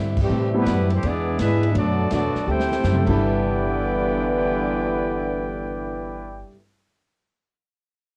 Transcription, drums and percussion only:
0, 0, Header, 1, 2, 480
1, 0, Start_track
1, 0, Key_signature, 1, "major"
1, 0, Tempo, 362757
1, 404, Time_signature, 4, 2, 24, 8
1, 10807, End_track
2, 0, Start_track
2, 0, Title_t, "Drums"
2, 222, Note_on_c, 9, 49, 90
2, 225, Note_on_c, 9, 36, 99
2, 354, Note_off_c, 9, 49, 0
2, 357, Note_off_c, 9, 36, 0
2, 879, Note_on_c, 9, 44, 56
2, 879, Note_on_c, 9, 51, 77
2, 883, Note_on_c, 9, 38, 80
2, 1011, Note_off_c, 9, 44, 0
2, 1011, Note_off_c, 9, 51, 0
2, 1015, Note_off_c, 9, 38, 0
2, 1194, Note_on_c, 9, 51, 54
2, 1327, Note_off_c, 9, 51, 0
2, 1360, Note_on_c, 9, 51, 78
2, 1492, Note_off_c, 9, 51, 0
2, 1839, Note_on_c, 9, 44, 65
2, 1839, Note_on_c, 9, 51, 84
2, 1843, Note_on_c, 9, 38, 84
2, 1971, Note_off_c, 9, 44, 0
2, 1971, Note_off_c, 9, 51, 0
2, 1975, Note_off_c, 9, 38, 0
2, 2158, Note_on_c, 9, 51, 55
2, 2291, Note_off_c, 9, 51, 0
2, 2319, Note_on_c, 9, 51, 67
2, 2451, Note_off_c, 9, 51, 0
2, 2788, Note_on_c, 9, 44, 59
2, 2788, Note_on_c, 9, 51, 77
2, 2792, Note_on_c, 9, 38, 80
2, 2920, Note_off_c, 9, 44, 0
2, 2920, Note_off_c, 9, 51, 0
2, 2924, Note_off_c, 9, 38, 0
2, 3111, Note_on_c, 9, 38, 42
2, 3243, Note_off_c, 9, 38, 0
2, 3436, Note_on_c, 9, 38, 66
2, 3568, Note_off_c, 9, 38, 0
2, 3594, Note_on_c, 9, 38, 82
2, 3726, Note_off_c, 9, 38, 0
2, 3748, Note_on_c, 9, 44, 69
2, 3752, Note_on_c, 9, 38, 82
2, 3880, Note_off_c, 9, 44, 0
2, 3884, Note_off_c, 9, 38, 0
2, 3901, Note_on_c, 9, 47, 89
2, 4033, Note_off_c, 9, 47, 0
2, 4061, Note_on_c, 9, 49, 68
2, 4062, Note_on_c, 9, 36, 61
2, 4193, Note_off_c, 9, 49, 0
2, 4195, Note_off_c, 9, 36, 0
2, 10807, End_track
0, 0, End_of_file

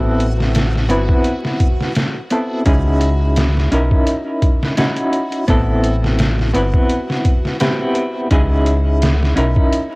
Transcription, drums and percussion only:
0, 0, Header, 1, 2, 480
1, 0, Start_track
1, 0, Tempo, 705882
1, 1810, Time_signature, 4, 2, 24, 8
1, 6769, End_track
2, 0, Start_track
2, 0, Title_t, "Drums"
2, 136, Note_on_c, 9, 42, 66
2, 204, Note_off_c, 9, 42, 0
2, 275, Note_on_c, 9, 38, 41
2, 343, Note_off_c, 9, 38, 0
2, 373, Note_on_c, 9, 42, 89
2, 381, Note_on_c, 9, 38, 106
2, 441, Note_off_c, 9, 42, 0
2, 449, Note_off_c, 9, 38, 0
2, 514, Note_on_c, 9, 38, 36
2, 582, Note_off_c, 9, 38, 0
2, 611, Note_on_c, 9, 42, 69
2, 679, Note_off_c, 9, 42, 0
2, 740, Note_on_c, 9, 36, 96
2, 808, Note_off_c, 9, 36, 0
2, 845, Note_on_c, 9, 42, 79
2, 913, Note_off_c, 9, 42, 0
2, 984, Note_on_c, 9, 38, 43
2, 1052, Note_off_c, 9, 38, 0
2, 1088, Note_on_c, 9, 36, 95
2, 1088, Note_on_c, 9, 42, 67
2, 1156, Note_off_c, 9, 36, 0
2, 1156, Note_off_c, 9, 42, 0
2, 1228, Note_on_c, 9, 38, 39
2, 1296, Note_off_c, 9, 38, 0
2, 1327, Note_on_c, 9, 42, 84
2, 1335, Note_on_c, 9, 38, 111
2, 1395, Note_off_c, 9, 42, 0
2, 1403, Note_off_c, 9, 38, 0
2, 1567, Note_on_c, 9, 42, 61
2, 1635, Note_off_c, 9, 42, 0
2, 1806, Note_on_c, 9, 42, 77
2, 1808, Note_on_c, 9, 36, 96
2, 1874, Note_off_c, 9, 42, 0
2, 1876, Note_off_c, 9, 36, 0
2, 2045, Note_on_c, 9, 42, 68
2, 2113, Note_off_c, 9, 42, 0
2, 2286, Note_on_c, 9, 42, 87
2, 2295, Note_on_c, 9, 38, 110
2, 2354, Note_off_c, 9, 42, 0
2, 2363, Note_off_c, 9, 38, 0
2, 2429, Note_on_c, 9, 38, 40
2, 2497, Note_off_c, 9, 38, 0
2, 2528, Note_on_c, 9, 42, 67
2, 2596, Note_off_c, 9, 42, 0
2, 2660, Note_on_c, 9, 36, 90
2, 2728, Note_off_c, 9, 36, 0
2, 2766, Note_on_c, 9, 42, 78
2, 2834, Note_off_c, 9, 42, 0
2, 3007, Note_on_c, 9, 42, 69
2, 3008, Note_on_c, 9, 36, 93
2, 3075, Note_off_c, 9, 42, 0
2, 3076, Note_off_c, 9, 36, 0
2, 3148, Note_on_c, 9, 38, 53
2, 3216, Note_off_c, 9, 38, 0
2, 3246, Note_on_c, 9, 42, 83
2, 3254, Note_on_c, 9, 38, 106
2, 3314, Note_off_c, 9, 42, 0
2, 3322, Note_off_c, 9, 38, 0
2, 3376, Note_on_c, 9, 42, 41
2, 3444, Note_off_c, 9, 42, 0
2, 3487, Note_on_c, 9, 42, 61
2, 3555, Note_off_c, 9, 42, 0
2, 3619, Note_on_c, 9, 42, 42
2, 3687, Note_off_c, 9, 42, 0
2, 3726, Note_on_c, 9, 42, 86
2, 3728, Note_on_c, 9, 36, 101
2, 3794, Note_off_c, 9, 42, 0
2, 3796, Note_off_c, 9, 36, 0
2, 3969, Note_on_c, 9, 42, 65
2, 4037, Note_off_c, 9, 42, 0
2, 4110, Note_on_c, 9, 38, 42
2, 4178, Note_off_c, 9, 38, 0
2, 4208, Note_on_c, 9, 42, 85
2, 4216, Note_on_c, 9, 38, 115
2, 4276, Note_off_c, 9, 42, 0
2, 4284, Note_off_c, 9, 38, 0
2, 4348, Note_on_c, 9, 38, 38
2, 4416, Note_off_c, 9, 38, 0
2, 4451, Note_on_c, 9, 42, 69
2, 4519, Note_off_c, 9, 42, 0
2, 4581, Note_on_c, 9, 36, 90
2, 4649, Note_off_c, 9, 36, 0
2, 4688, Note_on_c, 9, 42, 81
2, 4756, Note_off_c, 9, 42, 0
2, 4827, Note_on_c, 9, 38, 42
2, 4895, Note_off_c, 9, 38, 0
2, 4929, Note_on_c, 9, 42, 67
2, 4930, Note_on_c, 9, 36, 90
2, 4997, Note_off_c, 9, 42, 0
2, 4998, Note_off_c, 9, 36, 0
2, 5067, Note_on_c, 9, 38, 36
2, 5135, Note_off_c, 9, 38, 0
2, 5169, Note_on_c, 9, 42, 86
2, 5177, Note_on_c, 9, 38, 116
2, 5237, Note_off_c, 9, 42, 0
2, 5245, Note_off_c, 9, 38, 0
2, 5407, Note_on_c, 9, 42, 62
2, 5475, Note_off_c, 9, 42, 0
2, 5649, Note_on_c, 9, 42, 83
2, 5651, Note_on_c, 9, 36, 100
2, 5717, Note_off_c, 9, 42, 0
2, 5719, Note_off_c, 9, 36, 0
2, 5889, Note_on_c, 9, 42, 60
2, 5957, Note_off_c, 9, 42, 0
2, 6133, Note_on_c, 9, 42, 87
2, 6141, Note_on_c, 9, 38, 120
2, 6201, Note_off_c, 9, 42, 0
2, 6209, Note_off_c, 9, 38, 0
2, 6274, Note_on_c, 9, 38, 41
2, 6342, Note_off_c, 9, 38, 0
2, 6370, Note_on_c, 9, 42, 69
2, 6438, Note_off_c, 9, 42, 0
2, 6503, Note_on_c, 9, 36, 92
2, 6571, Note_off_c, 9, 36, 0
2, 6614, Note_on_c, 9, 42, 79
2, 6682, Note_off_c, 9, 42, 0
2, 6769, End_track
0, 0, End_of_file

